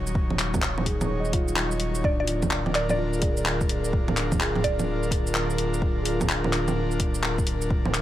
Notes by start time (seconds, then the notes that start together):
Already playing: D#1 D#3 F#3 D#4 C#5
0.07 shaker
0.15 kick
0.30 low bongo
0.39 clap, open hi-hat, shaker
0.54 kick, low bongo, shaker
0.62 clap
0.78 low bongo
0.86 G#4, kick, open hi-hat
1.01 low bongo, shaker
1.06 C#5
1.20 D#5
1.25 shaker
1.33 F4, kick, open hi-hat
1.48 shaker
1.56 clap
1.71 shaker
1.80 open hi-hat
1.95 shaker
2.03 D1 D3 D4 D5, kick
2.11 D4 A#4
2.20 F4 D5
2.27 F4, open hi-hat, shaker
2.42 kick, low bongo, shaker
2.51 clap
2.66 low bongo
2.75 D5, clap, open hi-hat
2.89 D5, low bongo, shaker
2.98 F4
3.13 shaker
3.19 G#4, kick, open hi-hat
3.32 A#4
3.37 shaker
3.46 clap
3.61 kick, shaker
3.69 G#4, open hi-hat
3.85 shaker
3.93 kick
4.08 low bongo
4.17 clap, open hi-hat, shaker
4.32 kick, low bongo, shaker
4.40 G#4, clap
4.56 low bongo
4.64 D5, kick, open hi-hat
4.79 low bongo, shaker
5.03 shaker
5.11 kick, open hi-hat
5.27 shaker
5.35 clap
5.50 shaker
5.58 open hi-hat
5.74 shaker
5.82 F4, kick
6.02 G#4, open hi-hat, shaker
6.20 kick, low bongo, shaker
6.29 clap
6.44 low bongo
6.53 clap, open hi-hat
6.68 low bongo, shaker
6.91 shaker
7.00 kick, open hi-hat
7.15 shaker
7.23 clap
7.38 kick, shaker
7.47 open hi-hat
7.62 shaker
7.70 kick
7.85 low bongo
7.94 clap, open hi-hat, shaker